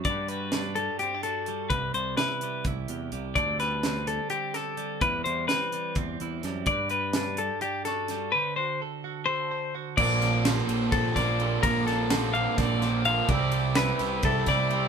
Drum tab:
CC |-------|-------|-------|-------|
RD |-------|-------|-------|-------|
HH |xxxxxxx|xxxxxxx|xxxxxxx|xxxxxxx|
SD |--o----|--o----|-oo--o-|--o---o|
BD |o------|o---o--|o------|o---o--|

CC |-------|-------|x------|-------|
RD |-------|-------|-xxxxxx|xxxxxxx|
HH |xxxxxxx|-------|-------|-------|
SD |--o--oo|-------|-oo--o-|-oo-oo-|
BD |o------|-------|o---oo-|o---o--|

CC |-------|
RD |xxxxxxx|
HH |-------|
SD |--oo-o-|
BD |o---oo-|